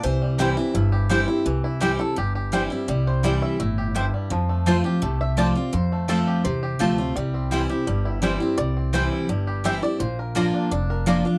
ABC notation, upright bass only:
X:1
M:4/4
L:1/8
Q:1/4=169
K:Cmix
V:1 name="Upright bass" clef=bass
C,,4 G,,,4 | C,,4 G,,,4 | C,,4 G,,,4 | F,,4 C,,4 |
F,,4 E,,2 D,,2 | C,,4 G,,,4 | C,,4 G,,,4 | B,,,4 F,,,4 |]